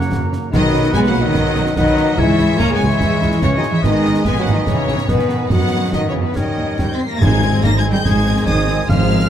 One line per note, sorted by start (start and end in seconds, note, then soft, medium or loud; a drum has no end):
0.00 0.29 F#2 loud
0.00 0.52 F#3 medium
0.00 0.54 A#3 medium
0.00 0.26 C#5 medium
0.00 0.25 F#5 medium
0.00 0.53 A#5 medium
0.00 snare medium
0.12 0.21 F#2 medium
0.12 concert bass drum medium
0.12 snare medium
0.33 snare medium
0.52 0.63 B1 loud
0.52 1.11 B2 loud
0.52 0.92 D#3 loud
0.52 1.60 F#3 medium
0.52 0.92 F#3 loud
0.52 1.60 B3 medium
0.52 0.91 D#4 loud
0.52 1.74 B4 medium
0.52 0.93 D#5 loud
0.52 1.74 F#5 loud
0.52 1.50 B5 loud
0.52 concert bass drum medium
0.52 snare medium
0.52 crash soft
0.56 0.93 D#5 loud
0.74 0.84 B1 medium
0.74 snare medium
0.84 snare medium
0.94 1.03 B1 medium
0.94 1.08 G#3 loud
0.94 1.08 B3 loud
0.94 1.08 G#4 loud
0.94 1.00 G#5 loud
0.94 concert bass drum medium
0.94 snare medium
1.04 1.22 F#4 loud
1.04 1.22 F#5 loud
1.04 snare medium
1.08 1.14 F#3 loud
1.08 1.22 A#3 loud
1.08 1.14 F#5 medium
1.14 1.24 B1 loud
1.14 snare medium
1.22 1.76 D#3 loud
1.22 1.76 F#3 loud
1.22 1.76 D#4 loud
1.22 1.76 D#5 loud
1.34 1.45 B1 medium
1.34 concert bass drum medium
1.34 snare medium
1.56 1.64 B1 medium
1.56 snare medium
1.66 snare medium
1.76 1.86 B1 loud
1.76 2.18 D#3 loud
1.76 2.18 F#3 medium
1.76 2.18 F#3 loud
1.76 1.86 B3 medium
1.76 2.18 D#4 loud
1.76 2.21 B4 medium
1.76 2.18 D#5 loud
1.76 2.20 F#5 loud
1.76 1.98 B5 medium
1.76 concert bass drum medium
1.76 snare medium
1.87 snare soft
1.96 2.18 A#3 medium
1.96 2.19 A#5 medium
1.96 snare medium
2.17 2.26 C#2 loud
2.17 3.42 C#3 medium
2.17 2.59 E3 loud
2.17 2.60 G#3 loud
2.17 3.42 G#3 medium
2.17 2.59 E4 loud
2.17 3.42 C#5 loud
2.17 3.43 C#5 medium
2.17 2.60 E5 loud
2.17 3.42 G#5 medium
2.17 concert bass drum medium
2.39 2.48 C#2 medium
2.39 snare medium
2.58 2.69 C#2 medium
2.58 2.74 A#3 loud
2.58 2.73 C#4 loud
2.58 2.73 A#4 loud
2.58 2.74 A#5 loud
2.58 concert bass drum medium
2.58 snare medium
2.70 2.87 B3 loud
2.70 2.86 G#4 loud
2.74 2.88 G#3 loud
2.74 2.88 G#5 medium
2.74 2.88 G#5 loud
2.80 2.89 C#2 loud
2.80 snare medium
2.86 3.42 E3 loud
2.86 3.41 G#3 loud
2.86 3.42 E4 loud
2.86 3.43 E5 loud
2.86 3.44 E5 loud
2.90 snare medium
3.00 3.10 C#2 medium
3.00 concert bass drum medium
3.00 snare medium
3.22 3.31 C#2 medium
3.22 snare medium
3.32 snare medium
3.42 3.51 C#2 medium
3.42 3.49 C#3 medium
3.42 3.84 C#3 medium
3.42 3.56 E3 loud
3.42 3.84 G#3 medium
3.42 3.57 C#4 loud
3.42 3.48 C#5 loud
3.42 3.83 C#5 medium
3.42 3.84 C#5 medium
3.42 3.57 C#5 medium
3.42 3.82 G#5 medium
3.42 concert bass drum medium
3.42 snare medium
3.55 3.63 D#3 loud
3.55 3.70 F#3 medium
3.55 3.72 D#4 loud
3.55 3.70 D#5 medium
3.63 snare medium
3.70 3.77 E3 medium
3.70 3.76 G#3 medium
3.70 3.84 E4 loud
3.70 3.84 E5 loud
3.70 3.85 E5 loud
3.82 3.92 G#1 loud
3.82 4.23 D#3 medium
3.82 4.26 D#3 loud
3.82 4.25 G#3 loud
3.82 4.23 B3 medium
3.82 4.26 D#4 loud
3.82 4.24 B4 medium
3.82 4.24 D#5 medium
3.82 4.26 D#5 loud
3.82 4.25 G#5 medium
3.82 concert bass drum medium
3.82 snare medium
4.05 4.14 G#1 medium
4.05 snare medium
4.15 snare medium
4.24 4.34 G#1 medium
4.24 4.40 G#3 loud
4.24 5.07 B3 medium
4.24 4.40 B3 loud
4.24 5.07 D#4 medium
4.24 4.40 G#4 loud
4.24 5.07 B4 medium
4.24 5.07 D#5 medium
4.24 4.77 G#5 medium
4.24 4.40 G#5 loud
4.24 4.41 G#5 loud
4.24 concert bass drum medium
4.24 snare medium
4.36 4.45 F#3 loud
4.36 4.54 A#3 loud
4.36 snare soft
4.40 4.54 F#4 loud
4.40 4.54 F#5 loud
4.46 4.55 G#1 medium
4.46 snare medium
4.53 4.67 D#3 medium
4.53 4.68 F#3 medium
4.53 4.68 D#4 loud
4.53 4.67 D#5 loud
4.53 4.67 D#5 medium
4.66 4.75 G#1 medium
4.66 5.09 C#3 medium
4.66 5.09 E3 medium
4.66 5.09 C#4 loud
4.66 5.09 C#5 medium
4.66 5.10 C#5 loud
4.66 concert bass drum medium
4.66 snare medium
4.88 4.96 G#1 medium
4.88 snare medium
4.98 snare medium
5.08 5.16 G#1 medium
5.08 5.50 B2 medium
5.08 5.50 D#3 medium
5.08 5.51 B3 loud
5.08 5.50 B3 medium
5.08 5.49 B4 medium
5.08 5.51 B4 medium
5.08 5.52 B4 medium
5.08 5.50 D#5 medium
5.08 5.50 G#5 medium
5.08 concert bass drum medium
5.08 snare medium
5.19 snare soft
5.29 snare soft
5.50 5.58 F#2 loud
5.50 5.92 D#3 medium
5.50 5.92 F#3 medium
5.50 5.92 B3 medium
5.50 5.93 B3 medium
5.50 5.93 F#4 loud
5.50 5.92 B4 medium
5.50 5.93 D#5 medium
5.50 5.93 F#5 loud
5.50 5.91 F#5 medium
5.50 5.93 F#5 loud
5.50 concert bass drum medium
5.50 snare medium
5.71 5.79 F#2 medium
5.92 6.00 F#2 medium
5.92 6.14 D#3 medium
5.92 6.07 D#3 medium
5.92 6.07 F#3 medium
5.92 6.35 B3 medium
5.92 6.08 D#4 medium
5.92 6.37 B4 medium
5.92 6.37 D#5 medium
5.92 6.08 D#5 medium
5.92 6.00 D#5 medium
5.92 6.34 F#5 medium
5.92 concert bass drum medium
5.92 snare medium
6.07 6.22 C#3 medium
6.07 6.21 E3 medium
6.07 6.22 C#4 medium
6.07 6.14 C#5 medium
6.07 6.15 C#5 medium
6.14 6.22 F#2 medium
6.14 6.36 E3 medium
6.21 6.36 B2 medium
6.21 6.36 D#3 medium
6.21 6.35 B3 medium
6.21 6.36 B4 medium
6.21 6.37 B4 medium
6.35 6.43 D#2 medium
6.35 6.79 D#3 medium
6.35 7.00 G3 medium
6.35 7.00 C#4 medium
6.35 6.98 D#4 medium
6.35 7.00 A#4 medium
6.35 7.00 C#5 medium
6.35 7.01 D#5 medium
6.35 6.79 D#5 medium
6.35 6.76 G5 medium
6.35 concert bass drum medium
6.35 snare medium
6.56 6.64 D#2 medium
6.77 6.86 D#2 medium
6.77 6.92 G3 medium
6.77 6.91 G5 medium
6.77 concert bass drum medium
6.77 snare medium
6.83 6.94 G6 medium
6.93 7.07 C4 medium
6.93 6.99 C6 medium
6.93 7.09 C7 medium
7.08 7.21 A#3 medium
7.08 7.22 A#5 medium
7.08 7.22 A#6 loud
7.20 7.58 G#1 loud
7.20 7.80 G#2 loud
7.20 8.84 D#3 medium
7.20 7.63 G#3 loud
7.20 9.29 G#3 medium
7.20 7.41 G#3 medium
7.20 9.29 C4 medium
7.20 7.41 D#4 medium
7.20 9.29 C5 medium
7.20 7.42 C5 medium
7.20 7.63 G#5 loud
7.20 7.64 G#6 loud
7.20 concert bass drum medium
7.20 crash soft
7.42 7.64 C4 medium
7.42 7.64 G#4 medium
7.42 7.64 D#5 medium
7.42 snare medium
7.63 8.00 G#1 medium
7.63 7.84 G#3 medium
7.63 7.68 A#3 loud
7.63 7.84 D#4 medium
7.63 7.85 C5 medium
7.63 7.77 A#5 loud
7.63 7.77 A#6 loud
7.63 concert bass drum medium
7.63 snare medium
7.77 7.83 G#3 loud
7.77 7.92 G#5 loud
7.77 7.84 G#6 loud
7.84 8.05 C4 medium
7.84 8.05 G#4 medium
7.84 8.05 D#5 medium
7.91 7.97 G3 loud
7.91 8.05 G5 medium
7.91 8.05 G6 loud
7.91 snare medium
8.04 8.42 G#1 medium
8.04 8.46 G#3 loud
8.04 8.24 G#3 medium
8.04 8.25 D#4 medium
8.04 8.25 C5 loud
8.04 8.44 D#5 medium
8.04 8.45 G#5 loud
8.04 8.48 G#6 loud
8.04 concert bass drum medium
8.04 snare medium
8.26 8.47 C4 medium
8.26 8.48 G#4 medium
8.26 8.48 D#5 medium
8.26 snare medium
8.36 snare medium
8.45 8.83 G#1 medium
8.45 8.88 D#3 medium
8.45 8.67 G#3 medium
8.45 8.67 D#4 medium
8.45 8.68 C5 medium
8.45 8.87 D#5 medium
8.45 8.87 G#5 loud
8.45 8.88 D#6 loud
8.45 concert bass drum medium
8.45 snare medium
8.57 snare medium
8.67 8.88 C4 medium
8.67 8.89 G#4 medium
8.67 8.88 D#5 medium
8.67 snare medium
8.87 9.24 G#1 loud
8.87 9.29 G#2 loud
8.87 9.29 F3 loud
8.87 9.29 F3 medium
8.87 9.08 G#3 medium
8.87 9.08 F4 medium
8.87 9.21 F5 loud
8.87 9.29 F5 loud
8.87 9.29 F6 loud
8.87 concert bass drum medium
8.87 snare medium
8.92 9.09 F4 medium
8.92 9.09 C5 medium
9.09 9.29 C4 medium
9.09 9.29 G#4 medium
9.09 9.29 F5 medium
9.09 snare medium
9.20 snare medium